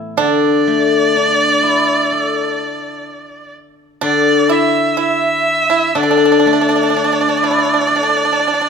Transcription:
Already playing: A2 E3 A3 B3 E4
0.17 D3 D4 D5
0.67 A3
1.16 D4
1.63 E4
2.12 A4
4.01 D3 D4 D5
4.49 E4 E5
4.97 E4 E5
5.70 E4
5.95 D3 D4 D5
6.03 D4
6.11 D4
6.17 D4
6.25 D4
6.32 D4
6.40 D4
6.46 A3 D4
6.53 D4
6.61 D4
6.69 D4
6.76 D4
6.83 D4
6.90 D4
6.94 D4
7.04 D4
7.12 D4
7.21 D4
7.29 D4
7.37 D4
7.42 D4 E4
7.51 D4
7.58 D4
7.65 D4
7.74 D4
7.81 D4
7.87 D4 A4
7.96 D4
8.03 D4
8.09 D4
8.17 D4
8.25 D4
8.33 D4
8.40 D4
8.47 D4
8.54 D4
8.61 D4

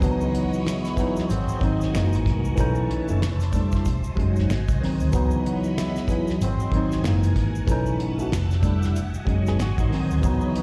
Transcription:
Already playing: D#5
0.00 C#2 E3 F#3 B3 C#5 B5, kick, closed hi-hat, shaker
0.05 D4
0.11 D#4
0.20 E3 G#3 C#4, shaker
0.34 B3 D#4 F#4, closed hi-hat
0.53 shaker
0.65 G#3 B3 E4, finger snap, snare, closed hi-hat, shaker
0.85 snare, closed hi-hat, shaker
0.95 E3 F#3 B3, kick, closed hi-hat, shaker
1.00 D#4
1.16 snare, shaker
1.29 G#1 F#3 G#3 C4 F#4 C5 D#5 G#5, closed hi-hat, shaker
1.48 muted fingered electric bass stroke, shaker
1.59 G#1 D#3 F#3 C4, kick, closed hi-hat
1.64 D#4
1.81 snare, shaker
1.92 F#1 E3 G#3 A#3 A#4 F#5, finger snap, snare, closed hi-hat, shaker
1.97 D#4
2.13 G#1, closed hi-hat, shaker
2.26 C2, kick, snare, closed hi-hat
2.45 shaker
2.55 B1 E3 A3 C#4 B4 C#5 A5, kick, closed hi-hat, shaker
2.60 D#4
2.75 shaker
2.91 closed hi-hat
3.07 F#1 E3 A3 C#4, shaker
3.12 E4
3.21 F1 G4 C5 E5, finger snap, snare, closed hi-hat, shaker
3.40 snare, closed hi-hat, shaker
3.52 G3 A3 D4, kick, closed hi-hat, shaker
3.57 E4
3.72 kick, snare, shaker
3.85 E1 F#4 D#5 G#5, kick, closed hi-hat, shaker
4.04 muted fingered electric bass stroke, shaker
4.16 F#1 F#3 G#3 C#4, kick, closed hi-hat
4.21 D#4
4.36 snare, shaker
4.49 G#1 C5, finger snap, snare, closed hi-hat, shaker
4.68 C2, kick, closed hi-hat, shaker
4.80 D#3 F#3 C4, snare, open hi-hat
4.85 D#4
5.00 D2, shaker
5.11 C#2 E3 F#3 B3 C#5 B5, kick, closed hi-hat, shaker
5.16 D#4
5.31 E3 G#3 C#4, shaker
5.45 B3 D#4 F#4, closed hi-hat
5.64 shaker
5.77 G#3 B3 E4, finger snap, snare, closed hi-hat, shaker
5.96 snare, shaker
6.08 E3 F#3 B3, kick, closed hi-hat, shaker
6.12 E4
6.28 snare, shaker
6.40 G#1 F#3 G#3 C4 F#4 C5 G#5, closed hi-hat, shaker
6.60 muted fingered electric bass stroke, shaker
6.72 G#1 D#3 F#3 C4, kick, closed hi-hat
6.76 D#4
6.91 snare, shaker
7.03 F#1 E3 G#3 A#3 A#4 F#5, finger snap, snare, closed hi-hat, shaker
7.08 D#4
7.23 closed hi-hat, shaker
7.36 G#1, kick, snare, closed hi-hat
7.55 shaker
7.67 B1 E3 A3 C#4 B4 F#5 A5, kick, closed hi-hat, shaker
7.72 D#4
7.86 shaker
8.00 closed hi-hat
8.17 E3 A3 C#4, shaker
8.22 F#4
8.31 F1 G4 E5, finger snap, snare, closed hi-hat, shaker
8.51 snare, shaker
8.62 G3 A3 D4, kick, closed hi-hat, shaker
8.67 E4
8.83 snare, shaker
8.95 E1 F#4 D#5 G#5, closed hi-hat, shaker
9.14 muted fingered electric bass stroke, shaker
9.25 F#1 F#3 G#3 C#4, kick, closed hi-hat
9.30 D#4
9.46 B3 G#4, snare, shaker
9.59 G#1 F#4 C5, finger snap, snare, closed hi-hat, shaker
9.78 A1 F#3 D#4, kick, closed hi-hat, shaker
9.89 D#3 F#3 C4, snare, open hi-hat
9.94 D#4
10.11 D2, shaker
10.21 C#2 E3 F#3 B3 C#5 B5, kick, closed hi-hat, shaker
10.26 D#4
10.41 E3 G#3 C#4, shaker
10.55 B3 D#4 F#4, closed hi-hat

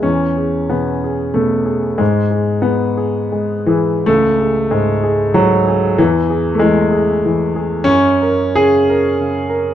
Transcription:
0.03 E2 C#4
0.37 G#4
0.70 B2 B3
1.04 G#4
1.34 B2 A3
1.65 G#4
1.98 G#2 G#3
2.31 G#4
2.62 G#3 B3
2.97 G#4
3.32 G#3
3.66 E3 G#4
4.06 C#2 A3
4.40 G#4
4.71 G#2 G#3
5.03 G#4
5.34 G#2 F#3
5.68 G#4
5.98 E2 E3
6.30 G#4
6.55 A3
6.59 E3 G#3
6.92 G#4
7.25 E3
7.56 G#4
7.84 F#2 C#4
8.22 A#4
8.55 C#3 G#4
8.89 A#4
9.20 C#3
9.49 A#4

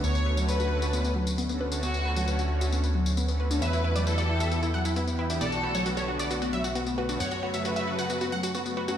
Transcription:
0.04 D2 B3 C#5, tambourine
0.15 tambourine
0.26 D3 A3 C#4 F#4 B4
0.37 D3 F#3 A3 C#4 F#4, tambourine
0.49 D3 A3 C#4 F#4 B4, tambourine
0.60 D3 A3 C#4 F#4, tambourine
0.71 D3 A3 C#4 F#4
0.82 F#4, tambourine
0.93 B3, tambourine
1.04 B3, tambourine
1.16 F#3
1.27 tambourine
1.38 B3, tambourine
1.49 D3 A3 B3 C#4 F#4, tambourine
1.61 B4
1.72 D3 A3 C#4 D4 F#4, tambourine
1.83 B3 F#4, tambourine
1.94 tambourine
2.05 D3 A3 C#4 F#4 B4
2.16 D3 F#3 A3 C#4 F#4, tambourine
2.27 D3 A3 C#4 F#4 B4, tambourine
2.39 D3 A3 C#4 F#4, tambourine
2.50 D3 A3 C#4 F#4
2.61 F#4, tambourine
2.72 B3, tambourine
2.84 B3, tambourine
2.95 F#3
3.06 tambourine
3.17 B3, tambourine
3.28 D3 A3 B3 C#4 F#4, tambourine
3.40 B4
3.51 D3 A3 C#4 D4 F#4, tambourine
3.62 E2 B3 B4 E5, tambourine
3.73 E4, tambourine
3.84 E3 G3 B3 E4 G4 B4
3.96 E3 F#3 G3 B3 G4 D5, tambourine
4.07 E3 G3 B3 E4 G4 A4 B4, tambourine
4.18 E3 G3 B3 F#4 G4 D5, tambourine
4.29 E3 G3 B3 E4 G4
4.40 F#4 E5, tambourine
4.52 B3 E4, tambourine
4.63 B3 E4, tambourine
4.74 F#3 F#5
4.85 E4, tambourine
4.96 B3 E4, tambourine
5.08 E3 G3 B3 G4, tambourine
5.19 E4 B4
5.30 E3 G3 B3 D4 E4 G4, tambourine
5.41 B1 B3 A4 D5, tambourine
5.52 F#4, tambourine
5.63 D3 A3 B3 F#4 B4
5.75 D3 F#3 A3 B3 F#4 C#5, tambourine
5.86 D3 A3 B3 F#4 B4, tambourine
5.97 D3 A3 B3 F#4 C#5, tambourine
6.08 D3 A3 B3 F#4
6.19 F#4 D5, tambourine
6.31 B3 F#4, tambourine
6.42 B3 F#4, tambourine
6.53 F#3 E5
6.64 F#4, tambourine
6.75 B3 F#4, tambourine
6.87 D3 A3 B3 F#4, tambourine
6.98 F#4 B4
7.09 D3 A3 B3 D4 F#4, tambourine
7.20 F#2 B3 C#5 F#5, tambourine
7.31 F#4, tambourine
7.42 C#3 F#3 A3 F#4 B4
7.54 C#3 F#3 A3 F#4 E5, tambourine
7.65 C#3 F#3 A3 F#4 B4, tambourine
7.76 C#3 F#3 A3 F#4 E5, tambourine
7.87 C#3 F#3 A3 F#4
7.99 F#4 F#5, tambourine
8.10 B3 F#4, tambourine
8.21 B3 F#4, tambourine
8.32 F#3 F#5
8.43 F#4, tambourine
8.55 B3 F#4, tambourine
8.66 C#3 F#3 A3 B3 F#4, tambourine
8.77 F#4 B4
8.88 C#3 F#3 A3 C#4 F#4, tambourine

